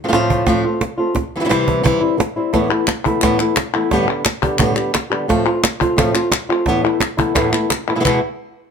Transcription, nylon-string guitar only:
0.04 0.07 F3 medium
0.04 0.07 A3 medium
0.04 0.08 C4 medium
0.04 0.08 F4 medium
0.08 0.12 F3 medium
0.08 0.12 A3 medium
0.08 0.13 C4 medium
0.08 0.13 F4 medium
0.13 0.46 A2 loud
0.13 0.46 F3 loud
0.13 0.46 A3 loud
0.13 0.47 C4 loud
0.13 0.47 F4 loud
0.47 0.64 A2 medium
0.47 0.64 F3 medium
0.47 0.64 A3 medium
0.47 0.64 C4 loud
0.47 0.63 F4 loud
0.64 0.82 A3 soft
0.64 0.82 C4 medium
0.64 0.81 F4 medium
0.82 muted nylon-string guitar stroke medium
0.98 1.16 A3 soft
0.98 1.15 C4 medium
0.98 1.15 F4 medium
1.15 muted nylon-string guitar stroke medium
1.36 1.39 E3 medium
1.36 1.39 G3 medium
1.36 1.40 C4 medium
1.36 1.40 E4 medium
1.40 1.43 E3 medium
1.40 1.44 G3 medium
1.40 1.45 C4 medium
1.40 1.45 E4 medium
1.45 1.48 E3 medium
1.45 1.49 G3 medium
1.45 1.49 C4 medium
1.45 1.49 E4 medium
1.49 1.82 C3 medium
1.49 1.83 E3 loud
1.49 1.83 G3 loud
1.49 1.84 C4 loud
1.49 1.84 E4 loud
1.83 2.01 C3 medium
1.83 2.01 E3 medium
1.83 2.01 G3 medium
1.83 2.00 C4 loud
1.83 1.99 E4 loud
2.01 2.17 G3 soft
2.01 2.17 C4 soft
2.01 2.18 E4 medium
2.17 muted nylon-string guitar stroke medium
2.36 2.54 G3 soft
2.36 2.53 C4 medium
2.36 2.53 E4 medium
2.53 2.70 E2 medium
2.53 2.70 A2 medium
2.53 2.70 E3 medium
2.53 2.70 A3 medium
2.53 2.69 B3 medium
2.53 2.68 E4 medium
2.70 2.87 E3 soft
2.70 2.87 A3 medium
2.70 2.87 B3 medium
2.70 2.87 E4 medium
2.88 muted nylon-string guitar stroke medium
3.06 3.22 E3 medium
3.06 3.22 A3 medium
3.06 3.22 B3 medium
3.06 3.22 E4 medium
3.22 3.39 E2 medium
3.22 3.39 A2 medium
3.22 3.39 E3 medium
3.22 3.40 A3 medium
3.22 3.40 B3 loud
3.22 3.39 E4 loud
3.40 3.56 E3 medium
3.40 3.56 A3 medium
3.40 3.56 B3 soft
3.40 3.57 E4 medium
3.57 muted nylon-string guitar stroke medium
3.74 3.92 E3 medium
3.74 3.91 A3 medium
3.74 3.91 B3 medium
3.74 3.90 E4 medium
3.91 4.08 G2 medium
3.91 4.08 A2 medium
3.91 4.08 D3 medium
3.91 4.08 G3 medium
3.91 4.08 B3 medium
3.91 4.07 G4 loud
4.08 4.25 D3 soft
4.08 4.25 G3 medium
4.08 4.25 G4 medium
4.25 muted nylon-string guitar stroke medium
4.43 4.59 D3 soft
4.43 4.59 G3 medium
4.43 4.60 B3 medium
4.43 4.59 G4 medium
4.60 4.76 G2 medium
4.60 4.77 A2 medium
4.60 4.76 D3 medium
4.60 4.76 G3 loud
4.60 4.75 B3 medium
4.60 4.74 G4 loud
4.75 4.93 D3 soft
4.75 4.93 G3 medium
4.75 4.93 B3 medium
4.75 4.93 G4 medium
4.94 muted nylon-string guitar stroke medium
5.10 5.28 D3 soft
5.10 5.28 G3 medium
5.10 5.28 B3 medium
5.10 5.28 G4 medium
5.28 5.45 A2 medium
5.28 5.46 F3 medium
5.28 5.46 A3 loud
5.28 5.45 C4 medium
5.28 5.44 F4 loud
5.45 5.62 A3 soft
5.45 5.63 C4 medium
5.45 5.62 F4 medium
5.63 muted nylon-string guitar stroke medium
5.81 5.97 A3 medium
5.81 5.97 C4 medium
5.81 5.97 F4 medium
5.97 6.14 A2 medium
5.97 6.14 F3 medium
5.97 6.15 A3 loud
5.97 6.14 C4 medium
5.97 6.13 F4 loud
6.14 6.31 A3 soft
6.14 6.31 C4 medium
6.14 6.31 F4 medium
6.32 muted nylon-string guitar stroke medium
6.49 6.67 A3 soft
6.49 6.67 C4 medium
6.49 6.66 F4 medium
6.67 6.83 E2 medium
6.67 6.84 A2 medium
6.67 6.84 E3 medium
6.67 6.83 A3 medium
6.67 6.83 B3 loud
6.67 6.83 E4 medium
6.84 7.00 E3 soft
6.84 7.00 A3 medium
6.84 7.00 B3 medium
6.84 7.00 E4 medium
7.00 muted nylon-string guitar stroke medium
7.17 7.34 E3 soft
7.17 7.35 A3 medium
7.17 7.35 B3 medium
7.17 7.35 E4 medium
7.35 7.52 E2 medium
7.35 7.52 A2 medium
7.35 7.52 E3 medium
7.35 7.52 A3 loud
7.35 7.51 B3 medium
7.35 7.51 E4 medium
7.52 7.70 E3 soft
7.52 7.70 A3 medium
7.52 7.69 B3 medium
7.52 7.69 E4 medium
7.70 muted nylon-string guitar stroke medium
7.88 7.95 E3 medium
7.88 7.95 A3 soft
7.88 7.95 B3 medium
7.88 7.95 E4 medium
7.95 7.99 B2 medium
7.95 7.99 E3 medium
7.95 7.99 G#3 medium
7.95 7.99 B3 medium
7.95 8.00 E4 medium
8.00 8.03 B2 medium
8.00 8.04 E3 medium
8.00 8.04 G#3 medium
8.00 8.04 B3 medium
8.00 8.04 E4 medium
8.04 8.18 E2 medium
8.04 8.18 B2 medium
8.04 8.19 E3 medium
8.04 8.19 G#3 medium
8.04 8.19 B3 loud
8.04 8.19 E4 medium

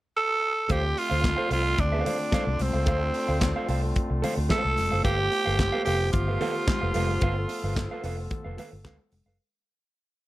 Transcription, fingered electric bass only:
0.70 0.92 D2 medium
1.11 1.34 D2 medium
1.51 1.74 C2 medium
1.79 2.01 D2 loud
2.47 2.58 C2 loud
2.60 2.72 C2 medium
2.74 2.87 C#2 medium
2.87 3.10 D2 loud
3.29 3.51 D2 medium
3.69 3.91 C2 medium
4.10 4.21 C2 medium
4.37 4.48 D2 loud
4.65 4.75 C2 medium
4.78 4.90 F1 medium
4.93 5.03 F#1 loud
5.05 5.27 G1 loud
5.47 5.69 G1 medium
5.87 6.09 F1 loud
6.14 6.36 G1 medium
6.83 6.93 F1 medium
6.95 7.10 F1 medium
7.10 7.20 F#1 medium
7.22 7.45 G1 loud
7.64 7.86 G1 medium
8.04 8.26 F1 medium
8.45 8.56 F1 medium
8.73 8.83 G1 loud
8.85 8.97 D2 medium
9.12 9.24 F1 medium
9.26 9.37 F#1 medium

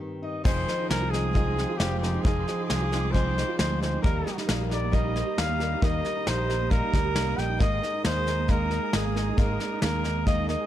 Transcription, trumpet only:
0.23 0.44 D#5 medium
0.44 0.87 C5 loud
0.89 1.12 A#4 loud
1.10 1.78 G#4 loud
1.77 1.99 G4 medium
1.99 2.23 G4 medium
2.22 2.64 G#4 loud
2.65 3.13 G#4 loud
3.11 3.58 C5 loud
3.58 3.79 C5 loud
3.82 4.02 C5 medium
4.02 4.40 A#4 medium
4.72 4.95 D5 loud
4.94 5.38 D#5 loud
5.40 5.85 F5 loud
5.83 6.29 D#5 loud
6.27 6.72 C5 loud
6.70 7.39 A#4 loud
7.38 7.60 G5 loud
7.61 8.02 D#5 loud
8.05 8.52 C5 loud
8.50 8.96 A#4 loud
8.95 9.40 G#4 medium
9.38 9.81 A#4 loud
9.81 10.23 A#4 loud
10.26 10.47 D#5 loud
10.49 10.66 D#5 loud

